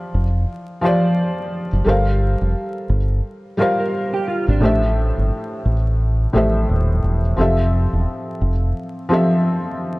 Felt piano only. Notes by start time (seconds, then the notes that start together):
Already playing: F3 F4 G4 C5 D5
0.81 F3 F4 G4 C5
0.86 D5
1.84 G3 G4 A4 A#4 C5
1.89 F5
3.57 G3 F4 G4 A#4 C5
3.62 F5
4.60 A2 A3 G4 C5
4.65 E5
6.33 A2 A3 G4 C5
6.37 E5
7.37 F3 C4 G4 A4
7.41 E5
9.09 F3 C4 G4 A4
9.13 E5